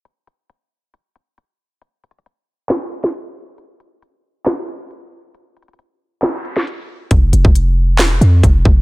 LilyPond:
<<
  \new Staff \with { instrumentName = "808-style bass" } { \clef bass \time 4/4 \key ees \mixolydian \tempo 4 = 136 r1 | r1 | r1 | r1 |
f,,8 f,,16 f,,4~ f,,16 ees,,16 f,,16 f,8 f,,8 f,,8 | }
  \new DrumStaff \with { instrumentName = "Drums" } \drummode { \time 4/4 hh8 hh8 hh4 hh8 hh8 hh4 | \tuplet 3/2 { hh16 r16 r16 hh16 hh16 hh16 } hh4 <hc sn>8 hh16 <hh sn>16 hh4 | hh8 hh8 hh4 <hc hh sn>8 hh8 hh4 | hh8 hh32 hh32 hh32 hh32 hh4 <hc sn>8 hh16 sn16 hh4 |
<hh bd>8 hh16 bd16 hh4 <hc hh sn>8 hh8 <hh bd>8 bd8 | }
>>